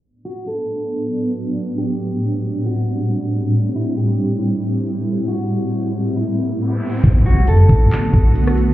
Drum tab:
HH |----------------|----------------|----------------|----------------|
CP |----------------|----------------|----------------|----------------|
SD |----------------|----------------|----------------|----------------|
BD |----------------|----------------|----------------|----------------|

HH |x---x-x-x---x-x-|
CP |--------x-------|
SD |-------------r--|
BD |o-----o---o-----|